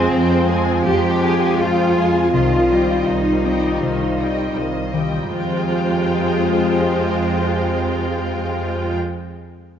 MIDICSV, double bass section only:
0, 0, Header, 1, 2, 480
1, 0, Start_track
1, 0, Key_signature, -4, "minor"
1, 0, Tempo, 740741
1, 1516, Time_signature, 4, 2, 24, 8
1, 6345, End_track
2, 0, Start_track
2, 0, Title_t, "Double bass section"
2, 0, Program_c, 0, 48
2, 75, Note_on_c, 0, 41, 67
2, 499, Note_off_c, 0, 41, 0
2, 556, Note_on_c, 0, 41, 60
2, 979, Note_off_c, 0, 41, 0
2, 1038, Note_on_c, 0, 41, 51
2, 1461, Note_off_c, 0, 41, 0
2, 1517, Note_on_c, 0, 36, 42
2, 1940, Note_off_c, 0, 36, 0
2, 1994, Note_on_c, 0, 36, 39
2, 2418, Note_off_c, 0, 36, 0
2, 2477, Note_on_c, 0, 36, 39
2, 2900, Note_off_c, 0, 36, 0
2, 2953, Note_on_c, 0, 36, 38
2, 3378, Note_off_c, 0, 36, 0
2, 3435, Note_on_c, 0, 41, 52
2, 5799, Note_off_c, 0, 41, 0
2, 6345, End_track
0, 0, End_of_file